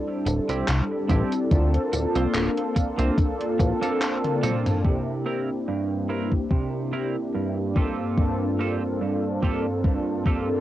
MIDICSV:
0, 0, Header, 1, 6, 480
1, 0, Start_track
1, 0, Tempo, 833333
1, 871, Time_signature, 4, 2, 24, 8
1, 6108, End_track
2, 0, Start_track
2, 0, Title_t, "Clean electric guitar"
2, 0, Program_c, 0, 27
2, 283, Note_on_c, 0, 60, 80
2, 284, Note_on_c, 0, 64, 72
2, 287, Note_on_c, 0, 67, 87
2, 392, Note_off_c, 0, 64, 0
2, 393, Note_off_c, 0, 60, 0
2, 393, Note_off_c, 0, 67, 0
2, 630, Note_on_c, 0, 60, 84
2, 635, Note_on_c, 0, 64, 75
2, 636, Note_on_c, 0, 67, 94
2, 761, Note_off_c, 0, 60, 0
2, 762, Note_off_c, 0, 64, 0
2, 762, Note_off_c, 0, 67, 0
2, 1239, Note_on_c, 0, 58, 80
2, 1241, Note_on_c, 0, 60, 76
2, 1244, Note_on_c, 0, 65, 76
2, 1248, Note_on_c, 0, 72, 90
2, 1351, Note_off_c, 0, 58, 0
2, 1351, Note_off_c, 0, 60, 0
2, 1351, Note_off_c, 0, 65, 0
2, 1352, Note_off_c, 0, 72, 0
2, 1716, Note_on_c, 0, 58, 78
2, 1720, Note_on_c, 0, 60, 71
2, 1721, Note_on_c, 0, 65, 73
2, 1724, Note_on_c, 0, 72, 88
2, 1829, Note_off_c, 0, 58, 0
2, 1830, Note_off_c, 0, 60, 0
2, 1830, Note_off_c, 0, 65, 0
2, 1831, Note_off_c, 0, 72, 0
2, 2196, Note_on_c, 0, 58, 80
2, 2199, Note_on_c, 0, 60, 72
2, 2202, Note_on_c, 0, 65, 72
2, 2206, Note_on_c, 0, 69, 87
2, 2310, Note_off_c, 0, 58, 0
2, 2310, Note_off_c, 0, 60, 0
2, 2310, Note_off_c, 0, 65, 0
2, 2311, Note_off_c, 0, 69, 0
2, 2550, Note_on_c, 0, 58, 85
2, 2551, Note_on_c, 0, 60, 81
2, 2552, Note_on_c, 0, 65, 76
2, 2552, Note_on_c, 0, 69, 94
2, 2681, Note_off_c, 0, 58, 0
2, 2681, Note_off_c, 0, 60, 0
2, 2681, Note_off_c, 0, 65, 0
2, 2681, Note_off_c, 0, 69, 0
2, 2790, Note_on_c, 0, 48, 76
2, 3027, Note_on_c, 0, 60, 76
2, 3030, Note_on_c, 0, 70, 83
2, 3031, Note_on_c, 0, 64, 69
2, 3159, Note_off_c, 0, 60, 0
2, 3160, Note_off_c, 0, 48, 0
2, 3161, Note_off_c, 0, 64, 0
2, 3161, Note_off_c, 0, 70, 0
2, 3271, Note_on_c, 0, 43, 80
2, 3508, Note_on_c, 0, 60, 81
2, 3510, Note_on_c, 0, 64, 75
2, 3512, Note_on_c, 0, 70, 88
2, 3640, Note_off_c, 0, 43, 0
2, 3640, Note_off_c, 0, 60, 0
2, 3640, Note_off_c, 0, 64, 0
2, 3640, Note_off_c, 0, 70, 0
2, 3750, Note_on_c, 0, 48, 79
2, 3990, Note_on_c, 0, 60, 80
2, 3992, Note_on_c, 0, 64, 75
2, 3993, Note_on_c, 0, 70, 87
2, 4120, Note_off_c, 0, 48, 0
2, 4121, Note_off_c, 0, 60, 0
2, 4121, Note_off_c, 0, 64, 0
2, 4121, Note_off_c, 0, 70, 0
2, 4232, Note_on_c, 0, 43, 77
2, 4468, Note_on_c, 0, 58, 81
2, 4471, Note_on_c, 0, 60, 78
2, 4472, Note_on_c, 0, 67, 76
2, 4474, Note_on_c, 0, 65, 75
2, 4477, Note_on_c, 0, 69, 92
2, 4600, Note_off_c, 0, 43, 0
2, 4710, Note_on_c, 0, 43, 77
2, 4862, Note_off_c, 0, 58, 0
2, 4863, Note_off_c, 0, 60, 0
2, 4863, Note_off_c, 0, 65, 0
2, 4863, Note_off_c, 0, 67, 0
2, 4863, Note_off_c, 0, 69, 0
2, 4947, Note_on_c, 0, 58, 78
2, 4950, Note_on_c, 0, 60, 72
2, 4952, Note_on_c, 0, 67, 72
2, 4954, Note_on_c, 0, 65, 71
2, 4956, Note_on_c, 0, 69, 85
2, 5080, Note_off_c, 0, 43, 0
2, 5080, Note_off_c, 0, 58, 0
2, 5080, Note_off_c, 0, 60, 0
2, 5081, Note_off_c, 0, 65, 0
2, 5081, Note_off_c, 0, 67, 0
2, 5081, Note_off_c, 0, 69, 0
2, 5190, Note_on_c, 0, 43, 77
2, 5427, Note_on_c, 0, 58, 83
2, 5430, Note_on_c, 0, 60, 75
2, 5433, Note_on_c, 0, 67, 76
2, 5435, Note_on_c, 0, 65, 73
2, 5438, Note_on_c, 0, 69, 90
2, 5560, Note_off_c, 0, 43, 0
2, 5561, Note_off_c, 0, 58, 0
2, 5561, Note_off_c, 0, 60, 0
2, 5561, Note_off_c, 0, 65, 0
2, 5561, Note_off_c, 0, 67, 0
2, 5561, Note_off_c, 0, 69, 0
2, 5671, Note_on_c, 0, 43, 82
2, 5908, Note_on_c, 0, 58, 82
2, 5911, Note_on_c, 0, 60, 77
2, 5914, Note_on_c, 0, 67, 75
2, 5915, Note_on_c, 0, 69, 92
2, 5918, Note_on_c, 0, 65, 76
2, 6040, Note_off_c, 0, 43, 0
2, 6041, Note_off_c, 0, 58, 0
2, 6041, Note_off_c, 0, 60, 0
2, 6041, Note_off_c, 0, 65, 0
2, 6041, Note_off_c, 0, 69, 0
2, 6042, Note_off_c, 0, 67, 0
2, 6108, End_track
3, 0, Start_track
3, 0, Title_t, "Analog polysynth"
3, 0, Program_c, 1, 90
3, 0, Control_c, 1, 64, 127
3, 0, Note_on_c, 1, 55, 84
3, 0, Note_on_c, 1, 60, 77
3, 0, Note_on_c, 1, 62, 75
3, 0, Note_on_c, 1, 64, 75
3, 0, Note_on_c, 1, 69, 91
3, 598, Note_off_c, 1, 55, 0
3, 600, Note_off_c, 1, 60, 0
3, 603, Note_off_c, 1, 62, 0
3, 605, Note_off_c, 1, 64, 0
3, 607, Note_off_c, 1, 69, 0
3, 624, Note_on_c, 1, 55, 80
3, 627, Note_on_c, 1, 60, 70
3, 629, Note_on_c, 1, 62, 72
3, 630, Note_on_c, 1, 64, 70
3, 633, Note_on_c, 1, 69, 83
3, 841, Note_off_c, 1, 55, 0
3, 843, Note_off_c, 1, 60, 0
3, 844, Note_off_c, 1, 62, 0
3, 844, Note_off_c, 1, 64, 0
3, 846, Note_off_c, 1, 69, 0
3, 863, Note_on_c, 1, 58, 93
3, 867, Note_on_c, 1, 60, 86
3, 872, Note_on_c, 1, 62, 85
3, 876, Note_on_c, 1, 65, 85
3, 878, Control_c, 1, 64, 0
3, 880, Note_on_c, 1, 69, 103
3, 965, Control_c, 1, 64, 127
3, 2166, Note_off_c, 1, 58, 0
3, 2168, Note_off_c, 1, 60, 0
3, 2170, Note_off_c, 1, 62, 0
3, 2173, Note_off_c, 1, 65, 0
3, 2174, Note_off_c, 1, 69, 0
3, 2190, Note_on_c, 1, 58, 93
3, 2194, Note_on_c, 1, 60, 86
3, 2199, Note_on_c, 1, 62, 85
3, 2203, Note_on_c, 1, 65, 86
3, 2208, Note_on_c, 1, 69, 105
3, 2759, Note_off_c, 1, 58, 0
3, 2761, Note_off_c, 1, 60, 0
3, 2764, Note_off_c, 1, 62, 0
3, 2766, Note_off_c, 1, 65, 0
3, 2768, Note_off_c, 1, 69, 0
3, 2782, Note_on_c, 1, 58, 79
3, 2785, Note_on_c, 1, 60, 71
3, 2791, Note_on_c, 1, 62, 72
3, 2794, Note_on_c, 1, 64, 72
3, 2799, Note_on_c, 1, 67, 86
3, 2800, Control_c, 1, 64, 0
3, 2882, Control_c, 1, 64, 127
3, 4440, Note_off_c, 1, 58, 0
3, 4442, Note_off_c, 1, 60, 0
3, 4445, Note_off_c, 1, 62, 0
3, 4446, Note_off_c, 1, 64, 0
3, 4449, Note_off_c, 1, 67, 0
3, 4463, Note_on_c, 1, 43, 74
3, 4465, Note_on_c, 1, 58, 69
3, 4468, Note_on_c, 1, 60, 68
3, 4470, Note_on_c, 1, 62, 68
3, 4471, Note_on_c, 1, 65, 68
3, 4473, Note_on_c, 1, 69, 85
3, 4479, Control_c, 1, 64, 0
3, 4573, Control_c, 1, 64, 127
3, 4681, Note_off_c, 1, 43, 0
3, 4682, Note_off_c, 1, 58, 0
3, 4683, Note_off_c, 1, 60, 0
3, 4684, Note_off_c, 1, 62, 0
3, 4685, Note_off_c, 1, 65, 0
3, 4686, Note_off_c, 1, 69, 0
3, 4701, Note_on_c, 1, 43, 89
3, 4705, Note_on_c, 1, 58, 81
3, 4708, Note_on_c, 1, 60, 80
3, 4710, Note_on_c, 1, 62, 82
3, 4715, Note_on_c, 1, 65, 83
3, 4718, Note_on_c, 1, 69, 100
3, 6005, Note_off_c, 1, 43, 0
3, 6007, Note_off_c, 1, 58, 0
3, 6008, Note_off_c, 1, 60, 0
3, 6009, Note_off_c, 1, 62, 0
3, 6012, Note_off_c, 1, 65, 0
3, 6013, Note_off_c, 1, 69, 0
3, 6030, Note_on_c, 1, 43, 89
3, 6033, Note_on_c, 1, 58, 81
3, 6037, Note_on_c, 1, 60, 84
3, 6041, Note_on_c, 1, 62, 81
3, 6043, Note_on_c, 1, 65, 83
3, 6047, Note_on_c, 1, 69, 103
3, 6108, Note_off_c, 1, 43, 0
3, 6108, Note_off_c, 1, 58, 0
3, 6108, Note_off_c, 1, 60, 0
3, 6108, Note_off_c, 1, 62, 0
3, 6108, Note_off_c, 1, 65, 0
3, 6108, Note_off_c, 1, 69, 0
3, 6108, End_track
4, 0, Start_track
4, 0, Title_t, "Analog synth bass"
4, 0, Program_c, 2, 38
4, 150, Note_on_c, 2, 26, 94
4, 229, Note_off_c, 2, 26, 0
4, 280, Note_on_c, 2, 36, 45
4, 369, Note_off_c, 2, 36, 0
4, 391, Note_on_c, 2, 36, 81
4, 470, Note_off_c, 2, 36, 0
4, 631, Note_on_c, 2, 33, 102
4, 710, Note_off_c, 2, 33, 0
4, 871, Note_on_c, 2, 38, 98
4, 1024, Note_off_c, 2, 38, 0
4, 1111, Note_on_c, 2, 26, 82
4, 1190, Note_off_c, 2, 26, 0
4, 1241, Note_on_c, 2, 36, 99
4, 1308, Note_off_c, 2, 36, 0
4, 1351, Note_on_c, 2, 26, 80
4, 1430, Note_off_c, 2, 26, 0
4, 1721, Note_on_c, 2, 36, 92
4, 1788, Note_off_c, 2, 36, 0
4, 2070, Note_on_c, 2, 33, 80
4, 2149, Note_off_c, 2, 33, 0
4, 6108, End_track
5, 0, Start_track
5, 0, Title_t, "Muted clean electric guitar strokes"
5, 155, Note_on_c, 9, 29, 100
5, 212, Note_off_c, 9, 29, 0
5, 1112, Note_on_c, 9, 29, 81
5, 1169, Note_off_c, 9, 29, 0
5, 1590, Note_on_c, 9, 29, 91
5, 1648, Note_off_c, 9, 29, 0
5, 2069, Note_on_c, 9, 29, 90
5, 2127, Note_off_c, 9, 29, 0
5, 6108, End_track
6, 0, Start_track
6, 0, Title_t, "Drums"
6, 152, Note_on_c, 9, 42, 76
6, 152, Note_on_c, 9, 54, 65
6, 210, Note_off_c, 9, 42, 0
6, 210, Note_off_c, 9, 54, 0
6, 283, Note_on_c, 9, 42, 52
6, 283, Note_on_c, 9, 54, 38
6, 340, Note_off_c, 9, 42, 0
6, 340, Note_off_c, 9, 54, 0
6, 391, Note_on_c, 9, 39, 109
6, 391, Note_on_c, 9, 42, 75
6, 391, Note_on_c, 9, 54, 28
6, 449, Note_off_c, 9, 39, 0
6, 449, Note_off_c, 9, 42, 0
6, 449, Note_off_c, 9, 54, 0
6, 630, Note_on_c, 9, 36, 99
6, 631, Note_on_c, 9, 42, 77
6, 631, Note_on_c, 9, 54, 65
6, 688, Note_off_c, 9, 36, 0
6, 689, Note_off_c, 9, 42, 0
6, 689, Note_off_c, 9, 54, 0
6, 761, Note_on_c, 9, 42, 50
6, 761, Note_on_c, 9, 54, 36
6, 818, Note_off_c, 9, 42, 0
6, 818, Note_off_c, 9, 54, 0
6, 870, Note_on_c, 9, 36, 115
6, 870, Note_on_c, 9, 42, 75
6, 870, Note_on_c, 9, 54, 29
6, 928, Note_off_c, 9, 36, 0
6, 928, Note_off_c, 9, 42, 0
6, 928, Note_off_c, 9, 54, 0
6, 1002, Note_on_c, 9, 42, 37
6, 1059, Note_off_c, 9, 42, 0
6, 1111, Note_on_c, 9, 42, 82
6, 1111, Note_on_c, 9, 54, 70
6, 1168, Note_off_c, 9, 42, 0
6, 1168, Note_off_c, 9, 54, 0
6, 1241, Note_on_c, 9, 42, 52
6, 1241, Note_on_c, 9, 54, 37
6, 1299, Note_off_c, 9, 42, 0
6, 1299, Note_off_c, 9, 54, 0
6, 1351, Note_on_c, 9, 39, 115
6, 1351, Note_on_c, 9, 42, 80
6, 1351, Note_on_c, 9, 54, 29
6, 1408, Note_off_c, 9, 39, 0
6, 1408, Note_off_c, 9, 42, 0
6, 1408, Note_off_c, 9, 54, 0
6, 1483, Note_on_c, 9, 42, 38
6, 1540, Note_off_c, 9, 42, 0
6, 1590, Note_on_c, 9, 36, 58
6, 1591, Note_on_c, 9, 42, 80
6, 1591, Note_on_c, 9, 54, 66
6, 1648, Note_off_c, 9, 36, 0
6, 1649, Note_off_c, 9, 42, 0
6, 1649, Note_off_c, 9, 54, 0
6, 1720, Note_on_c, 9, 42, 52
6, 1720, Note_on_c, 9, 54, 40
6, 1778, Note_off_c, 9, 42, 0
6, 1778, Note_off_c, 9, 54, 0
6, 1830, Note_on_c, 9, 36, 111
6, 1832, Note_on_c, 9, 42, 79
6, 1832, Note_on_c, 9, 54, 30
6, 1888, Note_off_c, 9, 36, 0
6, 1889, Note_off_c, 9, 42, 0
6, 1889, Note_off_c, 9, 54, 0
6, 1962, Note_on_c, 9, 42, 36
6, 2019, Note_off_c, 9, 42, 0
6, 2070, Note_on_c, 9, 36, 97
6, 2072, Note_on_c, 9, 42, 76
6, 2072, Note_on_c, 9, 54, 67
6, 2127, Note_off_c, 9, 36, 0
6, 2129, Note_off_c, 9, 42, 0
6, 2129, Note_off_c, 9, 54, 0
6, 2203, Note_on_c, 9, 42, 54
6, 2203, Note_on_c, 9, 54, 38
6, 2260, Note_off_c, 9, 42, 0
6, 2260, Note_off_c, 9, 54, 0
6, 2312, Note_on_c, 9, 39, 111
6, 2312, Note_on_c, 9, 42, 80
6, 2312, Note_on_c, 9, 54, 28
6, 2370, Note_off_c, 9, 39, 0
6, 2370, Note_off_c, 9, 42, 0
6, 2370, Note_off_c, 9, 54, 0
6, 2443, Note_on_c, 9, 42, 36
6, 2443, Note_on_c, 9, 48, 48
6, 2501, Note_off_c, 9, 42, 0
6, 2501, Note_off_c, 9, 48, 0
6, 2553, Note_on_c, 9, 42, 80
6, 2553, Note_on_c, 9, 47, 76
6, 2553, Note_on_c, 9, 54, 68
6, 2611, Note_off_c, 9, 42, 0
6, 2611, Note_off_c, 9, 47, 0
6, 2611, Note_off_c, 9, 54, 0
6, 2684, Note_on_c, 9, 42, 53
6, 2684, Note_on_c, 9, 45, 79
6, 2684, Note_on_c, 9, 54, 38
6, 2742, Note_off_c, 9, 42, 0
6, 2742, Note_off_c, 9, 45, 0
6, 2742, Note_off_c, 9, 54, 0
6, 2790, Note_on_c, 9, 36, 111
6, 2848, Note_off_c, 9, 36, 0
6, 3640, Note_on_c, 9, 36, 54
6, 3698, Note_off_c, 9, 36, 0
6, 3750, Note_on_c, 9, 36, 107
6, 3807, Note_off_c, 9, 36, 0
6, 4470, Note_on_c, 9, 36, 94
6, 4527, Note_off_c, 9, 36, 0
6, 4710, Note_on_c, 9, 36, 113
6, 4768, Note_off_c, 9, 36, 0
6, 5429, Note_on_c, 9, 36, 56
6, 5487, Note_off_c, 9, 36, 0
6, 5669, Note_on_c, 9, 36, 112
6, 5727, Note_off_c, 9, 36, 0
6, 5910, Note_on_c, 9, 36, 97
6, 5967, Note_off_c, 9, 36, 0
6, 6108, End_track
0, 0, End_of_file